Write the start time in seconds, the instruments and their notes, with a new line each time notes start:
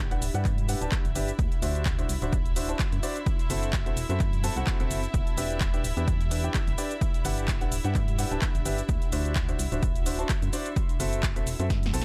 Already playing: fm bass G1, ambient pad D4 G4 E5 F#5 B5, string section E4 E5
0.11 grand piano D4 G4 B4 F#5, closed hi-hat, shaker
0.22 fm bass D1, open hi-hat, shaker
0.34 fm bass G2, grand piano D4 G4 B4 F#5, closed hi-hat, shaker
0.45 kick, clap, closed hi-hat, shaker
0.58 closed hi-hat, shaker
0.69 grand piano D4 G4 B4 F#5, open hi-hat, shaker
0.81 fm bass D1, grand piano D4 G4 B4 A5, closed hi-hat, shaker
0.92 kick, clap, closed hi-hat, shaker
1.05 fm bass G1, closed hi-hat, shaker
1.15 fm bass G1, grand piano D4 G4 B4 E5, open hi-hat, shaker
1.28 closed hi-hat, shaker
1.39 fm bass D2, kick, closed hi-hat, shaker
1.50 ambient pad F#4, closed hi-hat, shaker
1.62 fm bass D2, grand piano D4 F#4 C5 E5, open hi-hat, shaker
1.75 ambient pad E5, closed hi-hat, shaker
1.85 kick, clap, closed hi-hat, shaker
1.99 grand piano D4 F#4 C5 E5, closed hi-hat, shaker
2.09 fm bass C2, ambient pad C6, open hi-hat, shaker
2.22 fm bass D1, grand piano D4 F#4 C5 E5, closed hi-hat, shaker
2.33 kick, closed hi-hat, shaker
2.46 closed hi-hat, shaker
2.56 grand piano D4 F#4 C5 E5, open hi-hat, shaker
2.69 grand piano D4 F#4 C5 A5, closed hi-hat, shaker
2.79 kick, clap, closed hi-hat, shaker
2.92 fm bass F#2, closed hi-hat, shaker
3.03 grand piano D4 F#4 C5 D5, open hi-hat, shaker
3.16 closed hi-hat, shaker
3.26 ambient pad C4, kick, closed hi-hat, shaker
3.39 closed hi-hat, shaker
3.50 fm bass F#1, grand piano C4 F#4 A4 E5, open hi-hat, shaker
3.63 closed hi-hat, shaker
3.73 kick, clap, closed hi-hat, shaker
3.86 grand piano C4 F#4 A4 E5, closed hi-hat, shaker
3.94 fm bass E1, ambient pad A5, open hi-hat, shaker
4.09 fm bass F#2, grand piano C4 F#4 A4 E5, closed hi-hat, shaker
4.20 kick, clap, closed hi-hat, shaker
4.33 closed hi-hat, shaker
4.44 grand piano C4 F#4 A4 A5, open hi-hat, shaker
4.56 fm bass C2, grand piano C4 F#4 A4 F#5, closed hi-hat, shaker
4.67 kick, clap, closed hi-hat, shaker
4.80 fm bass F#1, grand piano C4 F#4 A4 E5, closed hi-hat, shaker
4.91 fm bass F#1, open hi-hat, shaker
5.03 closed hi-hat, shaker
5.14 fm bass E1, ambient pad D4, kick, closed hi-hat, shaker
5.21 ambient pad G4 B5
5.27 closed hi-hat, shaker
5.37 fm bass E1, grand piano D4 G4 B4 E5, open hi-hat, shaker
5.50 closed hi-hat, shaker
5.61 kick, clap, closed hi-hat, shaker
5.74 grand piano D4 G4 B4 E5, closed hi-hat, shaker
5.84 fm bass D1, open hi-hat, shaker
5.97 fm bass E2, grand piano D4 G4 B4 E5, closed hi-hat, shaker
6.08 kick, closed hi-hat, shaker
6.21 closed hi-hat, shaker
6.31 grand piano D4 G4 B4 E5, open hi-hat, shaker
6.44 grand piano D4 G4 B4 G5, closed hi-hat, shaker
6.54 kick, clap, closed hi-hat, shaker
6.67 fm bass G1, closed hi-hat, shaker
6.78 grand piano D4 G4 B4 D5, open hi-hat, shaker
6.91 closed hi-hat, shaker
7.01 kick, closed hi-hat, shaker
7.14 closed hi-hat, shaker
7.25 fm bass G1, grand piano D4 G4 B4 F#5, open hi-hat, shaker
7.38 closed hi-hat, shaker
7.46 ambient pad F#5, kick, clap, closed hi-hat, shaker
7.61 grand piano D4 G4 B4 F#5, closed hi-hat, shaker
7.72 fm bass D1, open hi-hat, shaker
7.84 fm bass G2, grand piano D4 G4 B4 F#5, closed hi-hat, shaker
7.95 kick, clap, closed hi-hat, shaker
8.08 closed hi-hat, shaker
8.19 grand piano D4 G4 B4 F#5, open hi-hat, shaker
8.31 fm bass D1, grand piano D4 G4 B4 A5, closed hi-hat, shaker
8.42 kick, clap, closed hi-hat, shaker
8.55 fm bass G1, closed hi-hat, shaker
8.65 fm bass G1, grand piano D4 G4 B4 E5, open hi-hat, shaker
8.78 closed hi-hat, shaker
8.89 fm bass D2, kick, closed hi-hat, shaker
8.97 ambient pad F#4
9.02 closed hi-hat, shaker
9.12 fm bass D2, grand piano D4 F#4 C5 E5, open hi-hat, shaker
9.25 closed hi-hat, shaker
9.36 ambient pad E5, kick, clap, closed hi-hat, shaker
9.48 grand piano D4 F#4 C5 E5, closed hi-hat, shaker
9.59 fm bass C2, ambient pad C6, open hi-hat, shaker
9.72 fm bass D1, grand piano D4 F#4 C5 E5, closed hi-hat, shaker
9.83 kick, closed hi-hat, shaker
9.96 closed hi-hat, shaker
10.06 grand piano D4 F#4 C5 E5, open hi-hat, shaker
10.19 grand piano D4 F#4 C5 A5, closed hi-hat, shaker
10.29 kick, clap, closed hi-hat, shaker
10.42 fm bass F#2, closed hi-hat, shaker
10.53 grand piano D4 F#4 C5 D5, open hi-hat, shaker
10.66 closed hi-hat, shaker
10.76 ambient pad C4, kick, closed hi-hat, shaker
10.89 closed hi-hat, shaker
11.00 fm bass F#1, grand piano C4 F#4 A4 E5, open hi-hat, shaker
11.13 closed hi-hat, shaker
11.23 kick, clap, closed hi-hat, shaker
11.29 ambient pad A5
11.36 grand piano C4 F#4 A4 E5, closed hi-hat, shaker
11.47 fm bass E1, open hi-hat, shaker
11.60 fm bass F#2, grand piano C4 F#4 A4 E5, closed hi-hat, shaker
11.70 kick, snare, closed hi-hat, swell, shaker
11.83 snare, closed hi-hat, shaker
11.94 fm bass B1, grand piano C4 F#4 A4 A5, open hi-hat, shaker
12.02 snare